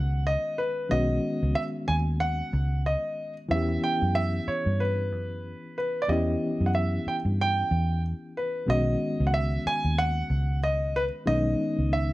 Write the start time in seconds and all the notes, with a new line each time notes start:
Already playing: C#2 D#3 G#3 B3 C#4 F#4 F#5
0.27 D#5
0.58 B4
0.89 B1 D#3 G#3 B3 C#4 F#4 D#5
1.43 C#2
1.55 E5
1.88 D#2 G#5
2.20 F#5
2.53 C#2
2.86 D#5
3.49 E2 E3 F#3 B3 C#4 E4 E5
3.55 G4
3.84 G5
4.02 F#2
4.15 E5
4.48 C#5, muted fingered electric bass stroke
4.66 G2
4.80 B4
5.12 F#2
5.78 B4
6.02 D5
6.08 E2 E3 B3 C#4 E4 G4 D#5
6.61 F#2
6.66 F#5
6.75 E5
7.07 G5, muted fingered electric bass stroke
7.25 G2
7.41 G5
7.71 E2
8.37 B4
8.66 B1 D3 G#3 B3 C#4 F#4 D#5
8.73 D#3
9.20 C#2
9.27 F#5
9.34 E5
9.66 G#5, muted fingered electric bass stroke
9.84 D#2
9.98 F#5
10.30 C#2
10.64 D#5
10.96 B4
11.26 B1 D#3 G#3 B3 C#4 D#4 D#5
11.79 C#2
11.93 E5